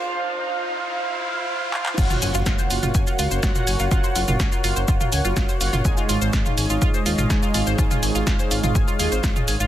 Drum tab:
CC |----------------|x---------------|----------------|----------------|
HH |----------------|--o---o---o---o-|--o---o---o---o-|--o---o---o---o-|
SH |----------------|xxxxxxxxxxxxxxxx|xxxxxxxxxxxxxxxx|xxxxxxxxxxxxxxxx|
CP |--------------xx|----------------|----------------|----------------|
SD |----------------|----o-------o---|----o-------o---|----o-------o---|
T2 |----------------|-o-----o-----o--|---o-----o-----o|-----o-----o----|
BD |----------------|o---o---o---o---|o---o---o---o---|o---o---o---o---|

CC |----------------|
HH |--o---o---o---o-|
SH |xxxxxxxxxxxxxxxx|
CP |----------------|
SD |----o-------o---|
T2 |-o-----o-----o--|
BD |o---o---o---o---|